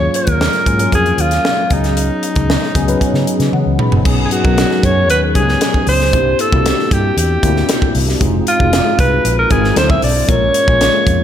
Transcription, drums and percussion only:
0.14 closed hi-hat
0.27 kick, closed hi-hat
0.41 snare
0.53 snare, closed hi-hat
0.66 kick, closed hi-hat
0.79 closed hi-hat
0.92 kick, closed hi-hat
1.06 closed hi-hat
1.18 closed hi-hat
1.31 snare, closed hi-hat
1.45 snare
1.70 kick, closed hi-hat
1.84 snare, closed hi-hat
1.97 closed hi-hat
2.23 closed hi-hat
2.36 kick, closed hi-hat
2.50 snare
2.63 snare
2.75 kick, closed hi-hat
2.88 closed hi-hat
3.01 kick, closed hi-hat
3.14 snare
3.27 closed hi-hat
3.40 snare, closed hi-hat
3.53 high tom
3.79 mid tom
3.92 floor tom
4.05 kick, crash
4.31 closed hi-hat
4.45 kick
4.58 snare, closed hi-hat
4.71 snare
4.83 kick, closed hi-hat
5.10 closed hi-hat
5.35 kick, closed hi-hat
5.49 snare
5.61 snare, closed hi-hat
5.74 kick
5.87 open hi-hat
6.01 snare
6.13 kick, closed hi-hat
6.39 closed hi-hat
6.53 kick
6.66 snare, closed hi-hat
6.79 snare
6.91 kick, closed hi-hat
7.18 closed hi-hat
7.43 kick, closed hi-hat
7.56 snare
7.69 snare, closed hi-hat
7.82 kick
7.95 open hi-hat
8.09 snare
8.21 kick, closed hi-hat
8.47 closed hi-hat
8.60 kick
8.73 snare, closed hi-hat
8.99 kick, closed hi-hat
9.25 closed hi-hat
9.51 kick, closed hi-hat
9.64 snare
9.76 snare, closed hi-hat
9.90 kick
10.02 open hi-hat
10.29 kick, closed hi-hat
10.54 closed hi-hat
10.68 kick
10.81 snare, closed hi-hat
11.07 kick, closed hi-hat

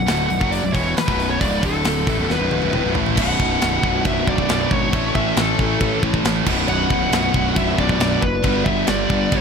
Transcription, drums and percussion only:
0.08 snare, open hi-hat
0.30 open hi-hat
0.41 kick
0.53 open hi-hat
0.75 kick, open hi-hat
0.97 snare, open hi-hat
1.08 kick
1.20 open hi-hat
1.41 kick, open hi-hat
1.63 kick, open hi-hat
1.85 snare, open hi-hat
2.07 kick, open hi-hat
2.30 snare
2.51 high tom
2.62 high tom
2.73 mid tom
2.95 floor tom
3.06 floor tom
3.17 kick, crash
3.40 kick
3.62 snare, crash
3.83 kick
4.05 kick, crash
4.27 kick
4.38 kick
4.49 snare, crash
4.71 kick
4.93 kick, crash
5.15 kick
5.37 snare, crash
5.59 kick
5.80 kick, crash
6.03 kick
6.14 kick
6.25 snare, crash
6.46 kick, crash
6.68 crash
6.90 kick
7.12 snare, crash
7.34 kick
7.56 kick, crash
7.78 kick
7.89 kick
8.00 snare, crash
8.22 kick
8.44 kick, crash
8.66 kick
8.87 snare, crash
9.10 kick
9.32 kick, crash

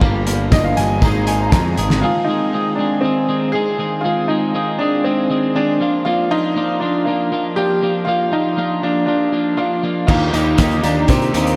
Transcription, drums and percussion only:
0.01 kick, tambourine
0.27 closed hi-hat, tambourine
0.52 kick, snare, tambourine
0.77 closed hi-hat, tambourine
1.02 kick, tambourine
1.27 closed hi-hat, tambourine
1.52 kick, snare, tambourine
1.77 closed hi-hat, tambourine
1.90 snare
10.08 kick, tambourine, crash
10.34 closed hi-hat, tambourine
10.58 kick, snare, closed hi-hat, tambourine
10.71 closed hi-hat
10.84 closed hi-hat, tambourine
11.08 kick, closed hi-hat, tambourine
11.22 closed hi-hat
11.34 closed hi-hat, tambourine
11.47 closed hi-hat

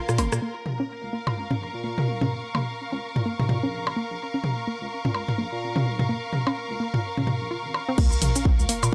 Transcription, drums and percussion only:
0.09 cross-stick, cabasa
0.18 open hi-hat, percussion blips
0.32 cross-stick, cabasa
0.66 high tom
1.27 mid tom, percussion blips
1.51 mid tom
1.98 high tom
2.21 mid tom, high tom
2.55 high tom, percussion blips
3.16 mid tom
3.40 mid tom, high tom
3.49 mid tom, high tom
3.87 percussion blips
4.44 high tom
5.05 mid tom
5.15 percussion blips
5.29 mid tom
5.76 high tom
5.99 mid tom, high tom
6.33 high tom
6.47 percussion blips
6.94 mid tom
7.18 mid tom, high tom
7.27 mid tom, high tom
7.74 percussion blips
7.98 kick, crash
8.12 cabasa
8.22 open hi-hat, high tom
8.36 open hi-hat, cabasa
8.45 kick
8.59 cabasa
8.69 open hi-hat
8.83 percussion blips, cabasa

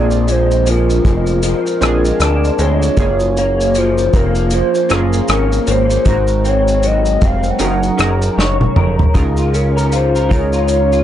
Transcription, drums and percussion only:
0.11 shaker
0.28 closed hi-hat, shaker
0.51 shaker
0.67 closed hi-hat, shaker
0.90 shaker
1.05 kick, closed hi-hat, shaker
1.27 shaker
1.43 closed hi-hat, shaker
1.67 shaker
1.82 cross-stick, closed hi-hat, shaker
2.05 shaker
2.20 cross-stick, closed hi-hat, shaker
2.44 shaker
2.59 closed hi-hat, shaker
2.82 shaker
2.97 kick, closed hi-hat, shaker
3.20 shaker
3.37 closed hi-hat, shaker
3.61 shaker
3.75 closed hi-hat, shaker
3.98 shaker
4.14 kick, closed hi-hat, shaker
4.35 shaker
4.51 closed hi-hat, shaker
4.75 shaker
4.90 cross-stick, closed hi-hat, shaker
5.13 shaker
5.28 cross-stick, closed hi-hat, shaker
5.52 shaker
5.67 closed hi-hat, shaker
5.90 shaker
6.06 kick, closed hi-hat, shaker
6.28 shaker
6.45 closed hi-hat, shaker
6.68 shaker
6.83 closed hi-hat, shaker
7.06 shaker
7.22 kick, closed hi-hat, shaker
7.43 shaker
7.59 closed hi-hat, shaker
7.83 shaker
7.99 cross-stick, closed hi-hat, shaker
8.22 shaker
8.39 snare
8.61 high tom
8.76 mid tom
8.99 floor tom
9.15 kick, closed hi-hat, shaker
9.37 shaker
9.54 closed hi-hat, shaker
9.78 shaker
9.92 closed hi-hat, shaker
10.16 shaker
10.31 kick, closed hi-hat, shaker
10.53 shaker
10.68 closed hi-hat, shaker
10.93 shaker

